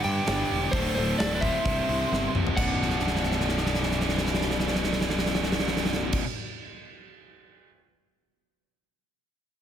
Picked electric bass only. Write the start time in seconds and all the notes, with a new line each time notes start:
0.04 G2
0.28 G1
0.51 E1
0.73 D1
0.97 D1
1.20 D1
1.65 C1
1.89 C2
2.12 G1
2.34 C1
2.57 B0